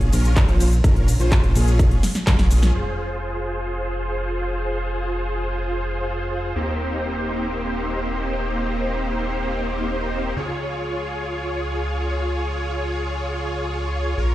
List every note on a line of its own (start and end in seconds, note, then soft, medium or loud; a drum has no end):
0.00 0.10 A#1 loud
0.00 closed hi-hat soft
0.13 0.46 A#1 loud
0.13 0.46 C#4 loud
0.13 0.46 F4 medium
0.13 0.46 A#4 loud
0.13 open hi-hat loud
0.13 ride medium
0.13 shaker medium
0.25 closed hi-hat soft
0.25 shaker soft
0.37 kick loud
0.37 clap loud
0.37 closed hi-hat loud
0.37 shaker soft
0.48 0.82 A#1 loud
0.48 0.64 C#4 loud
0.48 0.64 F4 medium
0.48 0.64 C5 loud
0.48 closed hi-hat soft
0.60 open hi-hat loud
0.60 ride medium
0.60 shaker medium
0.72 closed hi-hat soft
0.72 shaker soft
0.84 1.17 A#1 loud
0.84 1.10 C#4 medium
0.84 1.10 F4 medium
0.84 1.10 A#4 medium
0.84 kick loud
0.84 closed hi-hat loud
0.84 shaker soft
0.96 closed hi-hat soft
1.08 open hi-hat loud
1.08 ride medium
1.08 shaker medium
1.20 1.53 A#1 loud
1.20 1.53 C#4 medium
1.20 1.53 F4 medium
1.20 1.53 C5 medium
1.20 closed hi-hat soft
1.20 shaker soft
1.32 kick loud
1.32 clap loud
1.32 closed hi-hat loud
1.32 shaker soft
1.44 closed hi-hat soft
1.56 1.98 A#1 loud
1.56 2.00 C#4 medium
1.56 2.00 F4 medium
1.56 2.00 G#4 loud
1.56 open hi-hat loud
1.56 ride medium
1.56 shaker medium
1.68 closed hi-hat soft
1.68 shaker soft
1.79 kick loud
1.79 closed hi-hat loud
1.79 shaker soft
1.91 closed hi-hat soft
2.03 snare medium
2.03 open hi-hat loud
2.03 ride medium
2.03 shaker medium
2.15 snare medium
2.15 closed hi-hat soft
2.15 shaker soft
2.27 2.72 A#1 loud
2.27 2.72 C#4 medium
2.27 2.72 F4 medium
2.27 2.72 G#4 medium
2.27 kick loud
2.27 snare medium
2.27 clap loud
2.27 closed hi-hat loud
2.27 shaker soft
2.39 snare medium
2.39 closed hi-hat soft
2.51 open hi-hat loud
2.51 ride medium
2.51 shaker medium
2.63 snare medium
2.63 closed hi-hat soft
2.63 shaker soft
2.75 6.53 F1 medium
2.75 6.53 F4 medium
2.75 6.53 G#4 medium
2.75 6.53 C5 medium
6.55 10.34 D#1 medium
6.55 10.34 A#3 medium
6.55 10.34 C4 medium
6.55 10.34 D#4 medium
6.55 10.34 G4 medium
6.55 10.34 C5 medium
10.36 14.15 C#2 medium
10.36 14.15 F4 medium
10.36 14.15 G#4 medium
10.36 14.15 C#5 medium
14.17 14.35 A#1 medium
14.17 14.35 F4 medium
14.17 14.35 A#4 medium
14.17 14.35 C#5 medium